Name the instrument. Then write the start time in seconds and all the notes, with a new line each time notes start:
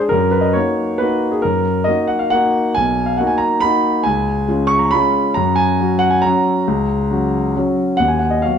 grand piano
0.00 G#4
0.09 F#2 A#4
0.31 B4
0.41 D#5
0.53 A#3 D#4 F#4 C#5
0.98 A#3 D#4 F#4 B4
1.31 G#4
1.42 F#2 A#4
1.84 A#3 D#4 F#4 D#5
2.07 F#5
2.19 F5
2.30 A#3 D#4 F#4 F#5
2.75 B1 G#5
3.06 F5
3.17 A#3 D#4 F#4 F#5
3.27 G#5
3.38 A#5
3.60 A#3 D#4 F#4 B5
4.03 C#2 G#5
4.48 G#3 C#4 F4
4.67 C#6
4.79 A#5
4.91 G#3 C#4 F4 B5
5.34 F#2 A#5
5.56 G#5
5.80 F#3 C#4 F#4
5.99 F#5
6.10 G#5
6.22 F#3 C#4 F#4 A#5
6.67 C#2
7.11 F#3 C#4 F#4
7.56 F#3 C#4 F#4
7.97 D#2 F#5
8.08 G#5
8.19 F#5
8.30 D#5
8.42 F#3 B3 F#4 F5